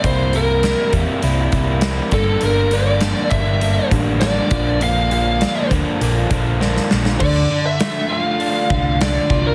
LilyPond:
<<
  \new Staff \with { instrumentName = "Lead electric guitar" } { \time 4/4 \key d \minor \tempo 4 = 100 c''8 bes'4 r2 a'8 | bes'8 d''4 e''4 r8 d''4 | f''8 f''4 r2 r8 | d''8. e''8. f''4. d''8. bes'16 | }
  \new Staff \with { instrumentName = "Overdriven electric guitar" } { \clef bass \time 4/4 \key d \minor <c g bes e'>8 <c g bes e'>8 <c g bes e'>8 <c g bes e'>8 <c g bes e'>8 <c g bes e'>8 <c g bes e'>8 <g, d g bes d'>8 | <g, d g bes d'>8 <g, d g bes d'>8 <g, d g bes d'>8 <g, d g bes d'>8 <g, d g bes d'>8 <g, d g bes d'>8 <g, d g bes d'>8 <bes, d f bes d'>8 | <bes, d f bes d'>8 <bes, d f bes d'>8 <bes, d f bes d'>8 <bes, d f bes d'>8 <bes, d f bes d'>8 <bes, d f bes d'>8 <bes, d f bes d'>8 <bes, d f bes d'>8 | d8 d8 a8 f'8 d'8 d8 d'8 f'8 | }
  \new Staff \with { instrumentName = "Picked electric bass" } { \clef bass \time 4/4 \key d \minor c,4. e,16 r16 c,8 c,4 g,,8 | g,,4. g,,4 a,,4 bes,,8~ | bes,,4. d,16 r16 bes,,8 bes,,4 bes,,8 | d,8 r2 c,4 c,8 | }
  \new DrumStaff \with { instrumentName = "Drums" } \drummode { \time 4/4 <hh bd>8 hh8 <hh sn>8 <hh bd>8 hh8 <hh bd>8 <hh sn>8 <hh bd>8 | hh8 hh8 <hh sn>8 <hh bd>8 hh8 <hh bd>8 <hh sn>8 <hh bd>8 | hh8 hh8 <hh sn>8 <hh bd>8 hh8 <hh bd>8 sn16 sn16 sn16 sn16 | <cymc bd>4 <hho sn>4 hho8 bd8 <hho sn>8 bd8 | }
>>